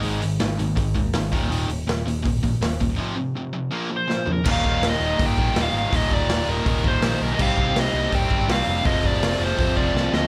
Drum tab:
CC |--------|--------|--------|x-------|
HH |oooooooo|oooooooo|--------|--o-o-o-|
SD |--o---o-|--o---o-|------o-|--o---o-|
FT |--------|--------|-------o|--------|
BD |----oo-o|----oo-o|--------|oo--oo--|

CC |--------|x-------|--------|
HH |o-o-o-o-|--o-o-o-|o-o-o---|
SD |--o---o-|--o---o-|--o---oo|
FT |--------|--------|--------|
BD |oo--oo--|oo--oo--|oo--oo--|